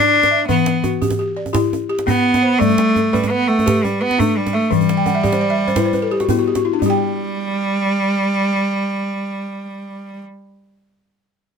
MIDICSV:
0, 0, Header, 1, 4, 480
1, 0, Start_track
1, 0, Tempo, 352113
1, 668, Time_signature, 12, 3, 24, 8
1, 15783, End_track
2, 0, Start_track
2, 0, Title_t, "Balafon"
2, 0, Program_c, 0, 12
2, 0, Note_on_c, 0, 62, 84
2, 425, Note_on_c, 0, 76, 66
2, 426, Note_off_c, 0, 62, 0
2, 665, Note_on_c, 0, 52, 92
2, 666, Note_on_c, 0, 71, 69
2, 907, Note_off_c, 0, 76, 0
2, 1140, Note_on_c, 0, 66, 65
2, 1147, Note_off_c, 0, 52, 0
2, 1385, Note_on_c, 0, 67, 84
2, 1388, Note_off_c, 0, 71, 0
2, 1605, Note_off_c, 0, 67, 0
2, 1622, Note_on_c, 0, 67, 67
2, 1861, Note_on_c, 0, 74, 59
2, 1865, Note_off_c, 0, 66, 0
2, 2071, Note_off_c, 0, 67, 0
2, 2087, Note_on_c, 0, 67, 64
2, 2088, Note_on_c, 0, 64, 85
2, 2566, Note_off_c, 0, 67, 0
2, 2579, Note_off_c, 0, 64, 0
2, 2583, Note_on_c, 0, 67, 82
2, 2585, Note_off_c, 0, 74, 0
2, 2819, Note_on_c, 0, 59, 86
2, 3303, Note_on_c, 0, 72, 63
2, 3304, Note_off_c, 0, 59, 0
2, 3306, Note_off_c, 0, 67, 0
2, 3539, Note_on_c, 0, 55, 92
2, 3540, Note_on_c, 0, 74, 71
2, 3786, Note_off_c, 0, 72, 0
2, 4024, Note_off_c, 0, 55, 0
2, 4026, Note_on_c, 0, 69, 59
2, 4264, Note_off_c, 0, 74, 0
2, 4270, Note_on_c, 0, 71, 81
2, 4490, Note_off_c, 0, 71, 0
2, 4506, Note_on_c, 0, 71, 68
2, 4747, Note_off_c, 0, 69, 0
2, 4757, Note_on_c, 0, 78, 62
2, 4974, Note_off_c, 0, 71, 0
2, 4991, Note_on_c, 0, 67, 90
2, 4991, Note_on_c, 0, 71, 66
2, 5447, Note_off_c, 0, 71, 0
2, 5463, Note_on_c, 0, 71, 70
2, 5470, Note_off_c, 0, 67, 0
2, 5472, Note_off_c, 0, 78, 0
2, 5705, Note_on_c, 0, 62, 92
2, 6178, Note_on_c, 0, 76, 67
2, 6185, Note_off_c, 0, 71, 0
2, 6186, Note_off_c, 0, 62, 0
2, 6415, Note_on_c, 0, 52, 93
2, 6662, Note_off_c, 0, 76, 0
2, 6779, Note_on_c, 0, 79, 77
2, 6895, Note_on_c, 0, 78, 76
2, 6901, Note_off_c, 0, 52, 0
2, 7006, Note_off_c, 0, 79, 0
2, 7014, Note_on_c, 0, 76, 71
2, 7124, Note_off_c, 0, 78, 0
2, 7136, Note_on_c, 0, 67, 81
2, 7137, Note_on_c, 0, 74, 72
2, 7243, Note_off_c, 0, 76, 0
2, 7260, Note_on_c, 0, 72, 70
2, 7361, Note_off_c, 0, 74, 0
2, 7377, Note_on_c, 0, 74, 68
2, 7486, Note_off_c, 0, 72, 0
2, 7499, Note_on_c, 0, 76, 75
2, 7592, Note_off_c, 0, 74, 0
2, 7608, Note_on_c, 0, 74, 58
2, 7621, Note_off_c, 0, 67, 0
2, 7726, Note_off_c, 0, 76, 0
2, 7738, Note_on_c, 0, 72, 78
2, 7839, Note_off_c, 0, 74, 0
2, 7851, Note_on_c, 0, 71, 67
2, 7855, Note_on_c, 0, 64, 86
2, 7959, Note_off_c, 0, 72, 0
2, 7975, Note_on_c, 0, 72, 65
2, 8075, Note_off_c, 0, 71, 0
2, 8091, Note_on_c, 0, 71, 71
2, 8203, Note_off_c, 0, 72, 0
2, 8211, Note_on_c, 0, 69, 81
2, 8321, Note_off_c, 0, 71, 0
2, 8335, Note_on_c, 0, 67, 81
2, 8340, Note_off_c, 0, 64, 0
2, 8441, Note_off_c, 0, 69, 0
2, 8458, Note_on_c, 0, 66, 75
2, 8563, Note_off_c, 0, 67, 0
2, 8584, Note_on_c, 0, 59, 91
2, 8586, Note_on_c, 0, 64, 70
2, 8685, Note_off_c, 0, 66, 0
2, 8705, Note_on_c, 0, 66, 68
2, 8809, Note_off_c, 0, 64, 0
2, 8828, Note_on_c, 0, 67, 67
2, 8928, Note_off_c, 0, 66, 0
2, 8944, Note_on_c, 0, 66, 77
2, 9050, Note_off_c, 0, 67, 0
2, 9064, Note_off_c, 0, 59, 0
2, 9064, Note_on_c, 0, 64, 64
2, 9168, Note_off_c, 0, 66, 0
2, 9180, Note_on_c, 0, 62, 69
2, 9287, Note_off_c, 0, 64, 0
2, 9295, Note_on_c, 0, 55, 77
2, 9350, Note_on_c, 0, 67, 79
2, 9405, Note_off_c, 0, 62, 0
2, 9405, Note_on_c, 0, 79, 80
2, 14017, Note_off_c, 0, 55, 0
2, 14071, Note_off_c, 0, 67, 0
2, 14127, Note_off_c, 0, 79, 0
2, 15783, End_track
3, 0, Start_track
3, 0, Title_t, "Cello"
3, 0, Program_c, 1, 42
3, 0, Note_on_c, 1, 62, 97
3, 642, Note_off_c, 1, 62, 0
3, 650, Note_on_c, 1, 59, 76
3, 1161, Note_off_c, 1, 59, 0
3, 2823, Note_on_c, 1, 59, 91
3, 3532, Note_on_c, 1, 57, 109
3, 3553, Note_off_c, 1, 59, 0
3, 4268, Note_on_c, 1, 55, 88
3, 4288, Note_off_c, 1, 57, 0
3, 4505, Note_on_c, 1, 59, 98
3, 4525, Note_off_c, 1, 55, 0
3, 4742, Note_on_c, 1, 57, 94
3, 4763, Note_off_c, 1, 59, 0
3, 5230, Note_on_c, 1, 55, 82
3, 5250, Note_off_c, 1, 57, 0
3, 5488, Note_on_c, 1, 59, 96
3, 5508, Note_off_c, 1, 55, 0
3, 5720, Note_on_c, 1, 57, 91
3, 5741, Note_off_c, 1, 59, 0
3, 5959, Note_on_c, 1, 55, 85
3, 5980, Note_off_c, 1, 57, 0
3, 6198, Note_on_c, 1, 57, 94
3, 6219, Note_off_c, 1, 55, 0
3, 6427, Note_on_c, 1, 55, 96
3, 6448, Note_off_c, 1, 57, 0
3, 8825, Note_off_c, 1, 55, 0
3, 9281, Note_on_c, 1, 55, 99
3, 13948, Note_off_c, 1, 55, 0
3, 15783, End_track
4, 0, Start_track
4, 0, Title_t, "Djembe"
4, 319, Note_on_c, 9, 62, 63
4, 319, Note_on_c, 9, 63, 60
4, 455, Note_off_c, 9, 62, 0
4, 455, Note_off_c, 9, 63, 0
4, 671, Note_on_c, 9, 62, 23
4, 671, Note_on_c, 9, 64, 72
4, 807, Note_off_c, 9, 62, 0
4, 807, Note_off_c, 9, 64, 0
4, 904, Note_on_c, 9, 62, 74
4, 1040, Note_off_c, 9, 62, 0
4, 1142, Note_on_c, 9, 62, 22
4, 1142, Note_on_c, 9, 63, 76
4, 1279, Note_off_c, 9, 62, 0
4, 1279, Note_off_c, 9, 63, 0
4, 1389, Note_on_c, 9, 64, 65
4, 1506, Note_on_c, 9, 62, 57
4, 1506, Note_on_c, 9, 63, 60
4, 1525, Note_off_c, 9, 64, 0
4, 1642, Note_off_c, 9, 62, 0
4, 1642, Note_off_c, 9, 63, 0
4, 1987, Note_on_c, 9, 63, 61
4, 2106, Note_on_c, 9, 62, 70
4, 2106, Note_on_c, 9, 64, 75
4, 2124, Note_off_c, 9, 63, 0
4, 2243, Note_off_c, 9, 62, 0
4, 2243, Note_off_c, 9, 64, 0
4, 2360, Note_on_c, 9, 63, 65
4, 2496, Note_off_c, 9, 63, 0
4, 2707, Note_on_c, 9, 62, 59
4, 2834, Note_on_c, 9, 63, 69
4, 2834, Note_on_c, 9, 64, 64
4, 2843, Note_off_c, 9, 62, 0
4, 2970, Note_off_c, 9, 63, 0
4, 2970, Note_off_c, 9, 64, 0
4, 3193, Note_on_c, 9, 62, 62
4, 3193, Note_on_c, 9, 63, 59
4, 3329, Note_off_c, 9, 62, 0
4, 3329, Note_off_c, 9, 63, 0
4, 3561, Note_on_c, 9, 62, 22
4, 3561, Note_on_c, 9, 64, 69
4, 3668, Note_on_c, 9, 63, 53
4, 3698, Note_off_c, 9, 62, 0
4, 3698, Note_off_c, 9, 64, 0
4, 3791, Note_on_c, 9, 62, 78
4, 3805, Note_off_c, 9, 63, 0
4, 3928, Note_off_c, 9, 62, 0
4, 4036, Note_on_c, 9, 62, 23
4, 4036, Note_on_c, 9, 63, 66
4, 4172, Note_off_c, 9, 62, 0
4, 4172, Note_off_c, 9, 63, 0
4, 4281, Note_on_c, 9, 64, 55
4, 4410, Note_on_c, 9, 62, 56
4, 4410, Note_on_c, 9, 63, 54
4, 4418, Note_off_c, 9, 64, 0
4, 4547, Note_off_c, 9, 62, 0
4, 4547, Note_off_c, 9, 63, 0
4, 4892, Note_on_c, 9, 63, 58
4, 5009, Note_on_c, 9, 62, 69
4, 5009, Note_on_c, 9, 64, 70
4, 5028, Note_off_c, 9, 63, 0
4, 5129, Note_off_c, 9, 62, 0
4, 5129, Note_on_c, 9, 62, 25
4, 5145, Note_off_c, 9, 64, 0
4, 5242, Note_on_c, 9, 63, 60
4, 5265, Note_off_c, 9, 62, 0
4, 5378, Note_off_c, 9, 63, 0
4, 5602, Note_on_c, 9, 62, 55
4, 5723, Note_on_c, 9, 63, 60
4, 5723, Note_on_c, 9, 64, 65
4, 5738, Note_off_c, 9, 62, 0
4, 5859, Note_off_c, 9, 63, 0
4, 5859, Note_off_c, 9, 64, 0
4, 6087, Note_on_c, 9, 62, 54
4, 6087, Note_on_c, 9, 63, 50
4, 6224, Note_off_c, 9, 62, 0
4, 6224, Note_off_c, 9, 63, 0
4, 6437, Note_on_c, 9, 62, 22
4, 6437, Note_on_c, 9, 64, 60
4, 6555, Note_on_c, 9, 63, 52
4, 6573, Note_off_c, 9, 62, 0
4, 6573, Note_off_c, 9, 64, 0
4, 6670, Note_on_c, 9, 62, 66
4, 6691, Note_off_c, 9, 63, 0
4, 6806, Note_off_c, 9, 62, 0
4, 6898, Note_on_c, 9, 63, 60
4, 7035, Note_off_c, 9, 63, 0
4, 7145, Note_on_c, 9, 62, 18
4, 7145, Note_on_c, 9, 64, 64
4, 7259, Note_off_c, 9, 62, 0
4, 7259, Note_on_c, 9, 62, 57
4, 7259, Note_on_c, 9, 63, 55
4, 7282, Note_off_c, 9, 64, 0
4, 7395, Note_off_c, 9, 62, 0
4, 7395, Note_off_c, 9, 63, 0
4, 7628, Note_on_c, 9, 62, 19
4, 7740, Note_on_c, 9, 63, 54
4, 7764, Note_off_c, 9, 62, 0
4, 7853, Note_on_c, 9, 62, 73
4, 7853, Note_on_c, 9, 64, 66
4, 7877, Note_off_c, 9, 63, 0
4, 7989, Note_off_c, 9, 62, 0
4, 7989, Note_off_c, 9, 64, 0
4, 8085, Note_on_c, 9, 63, 58
4, 8222, Note_off_c, 9, 63, 0
4, 8453, Note_on_c, 9, 62, 58
4, 8569, Note_on_c, 9, 63, 67
4, 8569, Note_on_c, 9, 64, 65
4, 8589, Note_off_c, 9, 62, 0
4, 8693, Note_on_c, 9, 62, 23
4, 8706, Note_off_c, 9, 63, 0
4, 8706, Note_off_c, 9, 64, 0
4, 8829, Note_off_c, 9, 62, 0
4, 8933, Note_on_c, 9, 62, 58
4, 8933, Note_on_c, 9, 63, 57
4, 9058, Note_off_c, 9, 62, 0
4, 9058, Note_on_c, 9, 62, 21
4, 9069, Note_off_c, 9, 63, 0
4, 9195, Note_off_c, 9, 62, 0
4, 9296, Note_on_c, 9, 64, 74
4, 9433, Note_off_c, 9, 64, 0
4, 15783, End_track
0, 0, End_of_file